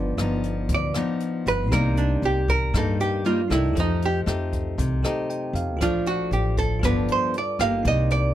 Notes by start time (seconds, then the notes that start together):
Already playing: G1 G2 F3 B3 D4 D#4 F4 B4 D5
0.17 G1 F3 B3 D#4, cross-stick, closed hi-hat
0.44 closed hi-hat
0.69 D2, kick, closed hi-hat
0.74 D5
0.94 F3 B3 D#4, cross-stick, closed hi-hat
1.20 closed hi-hat
1.46 G1 B4, closed hi-hat
1.69 C2 C3 G3 A#3 D#4 G4 A#4, kick, cross-stick, closed hi-hat
1.73 D#4 A#4 D5
1.97 D4, closed hi-hat
2.22 C2 G4, closed hi-hat
2.48 A#4, kick, closed hi-hat
2.74 G2 G3 A#3 D#4 A4, kick, cross-stick, closed hi-hat
3.00 G4, closed hi-hat
3.25 G3 A#3 D#4 F4, closed hi-hat
3.48 C2 A3 D#4 E4 G4 A#4 D5, cross-stick, closed hi-hat
3.74 F2 F3 G4 A4 C5, kick, closed hi-hat
3.79 D#4 D#5
4.02 G4, closed hi-hat
4.26 F2 A3 D#4 G4, cross-stick, closed hi-hat
4.53 kick, closed hi-hat
4.78 C2 C3, kick, closed hi-hat
5.03 A3 D#4 G4 A4 C5 D#5, cross-stick, closed hi-hat
5.30 G5, closed hi-hat
5.53 F2 F5, closed hi-hat
5.77 A#1 F3 F4 A4, kick
5.81 A3 D4 F4 C5 D5, cross-stick, closed hi-hat
6.06 F#4, closed hi-hat
6.31 A1 G4, closed hi-hat
6.57 A4, kick, closed hi-hat
6.79 G1 G2 F3 F4 A4 B4, kick, cross-stick, closed hi-hat
6.84 B3 D4 B4 D5
7.08 C5, closed hi-hat
7.34 closed hi-hat
7.38 D5
7.59 G1 A#3 D#4 G4 F5, cross-stick, closed hi-hat
7.83 C2 C3 D#4 G4, kick, closed hi-hat
7.87 A#4 D5 D#5
8.10 D5, closed hi-hat